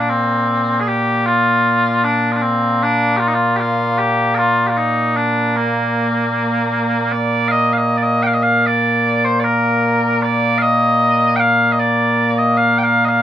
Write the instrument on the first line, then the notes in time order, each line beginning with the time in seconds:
bagpipes
Already playing: A#2 A#3
0.09 C4
0.80 G#4
0.87 G4
1.26 F4
2.04 D4
2.32 F4
2.36 D4
2.42 C4
2.83 D4
3.17 F4 G4
3.28 D#4
3.34 F4
3.56 F4 G4
3.98 G4
4.35 F4 A#4
4.67 F4 G4
4.77 D#4
5.16 D4
5.56 A#3
7.12 D5
7.48 D#5 F5
7.73 F5
7.78 D#5
7.98 D5
8.03 D#5
8.23 F5 G5
8.34 D#5
8.43 F5
8.67 D5
9.25 C5
9.40 D5
9.44 A#4
10.22 D5
10.58 D#5 F5
11.36 F5 G5
11.72 D#5
11.79 D5
12.38 D#5
12.57 F5
12.78 G5
12.83 F5
13.05 D#5 F5